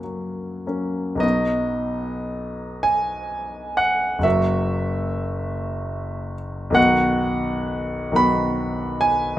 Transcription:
0.00 1.20 F#2 soft
0.00 1.26 C#3 soft
0.00 0.04 F#3 soft
0.00 0.65 F#3 soft
0.00 0.68 A#3 soft
0.00 0.67 C#4 soft
0.67 1.16 F#3 soft
0.67 1.19 A#3 soft
0.67 1.19 C#4 soft
1.15 4.17 B1 medium
1.15 4.18 F#3 soft
1.15 4.19 B3 soft
1.20 4.20 D#4 soft
1.20 2.85 D#5 medium
2.83 3.79 G#5 medium
3.77 4.24 F#5 medium
4.19 6.70 F#1 medium
4.19 6.71 F#3 soft
4.19 6.72 A#3 soft
4.23 6.73 F#4 soft
4.23 6.33 E5 medium
6.70 8.10 B1 medium
6.70 8.12 D#3 soft
6.70 8.13 B3 soft
6.75 8.15 F#4 soft
6.75 8.19 F#5 medium
8.12 9.36 B1 medium
8.12 9.37 D#3 soft
8.12 9.38 B3 soft
8.16 9.38 F#4 soft
8.16 9.02 B5 medium
9.01 9.39 G#5 medium

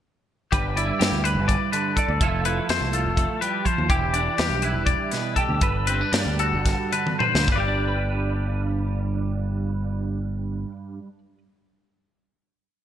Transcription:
0.52 0.91 G1 medium
0.52 2.21 G2 medium
0.52 0.76 G4 medium
0.52 1.24 B4 medium
0.52 kick loud
0.52 closed hi-hat medium
0.77 2.22 E4 medium
0.77 1.01 D5 medium
0.77 closed hi-hat medium
0.99 1.10 G2 medium
0.99 2.21 G3 soft
0.99 1.24 G4 medium
0.99 snare medium
0.99 closed hi-hat medium
1.12 1.36 D2 medium
1.24 1.48 B4 medium
1.24 1.97 B4 medium
1.24 closed hi-hat medium
1.35 1.55 G1 medium
1.48 1.72 D5 medium
1.48 kick medium
1.48 closed hi-hat medium
1.72 2.20 D3 medium
1.72 1.97 B4 medium
1.72 closed hi-hat medium
1.96 2.45 A4 medium
1.96 2.19 D5 medium
1.96 kick medium
1.96 closed hi-hat medium
2.08 2.18 D2 medium
2.21 2.59 F1 medium
2.21 3.64 F3 medium
2.21 2.68 A3 medium
2.21 2.45 E4 soft
2.21 2.92 F4 medium
2.21 3.88 A4 medium
2.21 kick medium
2.21 closed hi-hat medium
2.45 3.87 E4 soft
2.45 2.69 B4 medium
2.45 closed hi-hat medium
2.69 2.79 F2 medium
2.69 3.16 A3 medium
2.69 2.94 C5 medium
2.69 snare medium
2.69 closed hi-hat medium
2.81 3.07 C2 medium
2.93 3.87 F4 soft
2.93 3.41 A4 medium
2.93 closed hi-hat medium
3.06 3.25 F1 medium
3.17 3.41 A3 medium
3.17 kick medium
3.17 closed hi-hat medium
3.41 3.66 G3 medium
3.41 3.65 B4 medium
3.41 closed hi-hat medium
3.65 3.89 F3 medium
3.65 3.89 C5 medium
3.65 kick medium
3.65 closed hi-hat medium
3.78 3.87 D#2 medium
3.89 4.28 E1 medium
3.89 5.58 E3 medium
3.89 4.14 G4 medium
3.89 5.37 G4 medium
3.89 kick loud
3.89 closed hi-hat medium
4.13 5.88 D4 medium
4.13 4.38 D5 medium
4.13 closed hi-hat medium
4.38 4.48 E2 medium
4.38 6.12 G3 medium
4.38 4.63 G4 medium
4.38 snare medium
4.38 closed hi-hat medium
4.50 4.75 B1 medium
4.62 5.60 E4 soft
4.62 4.87 B4 medium
4.62 closed hi-hat medium
4.74 4.94 E1 medium
4.86 5.12 D5 medium
4.86 kick medium
4.86 closed hi-hat medium
5.12 5.59 B2 medium
5.12 5.36 B4 medium
5.12 snare soft
5.12 closed hi-hat medium
5.36 5.62 G4 medium
5.36 5.87 A4 medium
5.36 kick medium
5.36 closed hi-hat medium
5.49 5.59 D2 medium
5.61 6.02 G1 medium
5.61 7.47 G2 medium
5.61 7.20 B4 medium
5.61 kick loud
5.61 closed hi-hat medium
5.87 6.01 C4 medium
5.87 6.12 B4 medium
5.87 closed hi-hat medium
6.01 7.49 D4 soft
6.12 6.23 G2 medium
6.12 7.57 G3 medium
6.12 6.39 D5 medium
6.12 snare loud
6.12 closed hi-hat medium
6.26 6.54 D2 medium
6.39 7.45 F#4 soft
6.39 6.93 A4 medium
6.39 closed hi-hat medium
6.52 6.74 G1 medium
6.66 kick medium
6.66 snare soft
6.66 closed hi-hat medium
6.92 7.48 D3 medium
6.92 7.19 B4 medium
6.92 closed hi-hat medium
7.07 high tom medium
7.19 7.45 B4 medium
7.19 7.48 C5 medium
7.19 mid tom medium
7.35 7.46 D2 medium
7.35 snare medium
7.48 10.64 G1 medium
7.48 10.98 G2 medium
7.48 kick medium
7.52 7.60 B4 medium
7.52 10.72 D5 medium
7.58 11.08 G3 medium
7.58 10.76 G5 medium
7.68 11.18 D4 medium
7.88 11.38 B4 medium

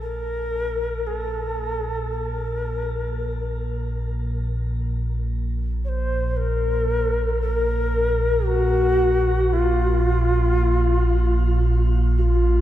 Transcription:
0.00 12.61 A#1 medium
0.00 12.61 A#2 medium
0.00 1.08 A#4 medium
1.07 2.13 A4 medium
2.13 2.26 A4 medium
2.26 3.72 A#4 medium
5.85 5.90 C#5 medium
5.89 6.38 C5 medium
6.37 7.41 A#4 medium
7.42 8.48 A#4 medium
8.47 9.54 F#4 medium
9.53 11.88 F4 medium
12.18 12.23 F#4 medium
12.22 12.61 F4 medium

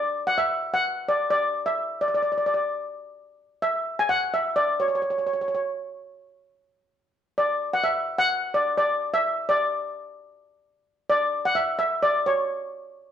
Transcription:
0.00 0.23 D5 medium
0.27 0.37 F#5 medium
0.38 0.73 E5 medium
0.74 1.05 F#5 medium
1.08 1.29 D5 medium
1.30 1.66 D5 medium
1.66 1.98 E5 medium
2.01 2.07 D5 medium
2.08 2.13 D5 soft
2.14 2.21 D5 medium
2.23 2.29 D5 soft
2.32 2.36 D5 medium
2.38 2.44 D5 medium
2.46 2.52 D5 medium
2.54 2.60 D5 soft
3.62 3.99 E5 medium
3.99 4.09 G#5 medium
4.09 4.33 F#5 medium
4.34 4.57 E5 medium
4.56 4.80 D5 medium
4.80 4.87 C#5 medium
4.88 4.94 C#5 soft
4.95 5.01 C#5 medium
5.02 5.09 C#5 soft
5.10 5.17 C#5 soft
5.18 5.25 C#5 soft
5.27 5.32 C#5 medium
5.33 5.40 C#5 soft
5.41 5.47 C#5 soft
5.48 5.53 C#5 soft
5.55 5.61 C#5 medium
7.38 7.73 D5 medium
7.73 7.78 F#5 medium
7.84 8.16 E5 medium
8.18 8.54 F#5 medium
8.54 8.76 D5 medium
8.78 9.13 D5 medium
9.14 9.45 E5 medium
9.49 10.14 D5 medium
11.10 11.46 D5 medium
11.45 11.57 F#5 medium
11.55 11.66 E5 medium
11.79 12.01 E5 medium
12.03 12.25 D5 medium
12.26 13.12 C#5 medium

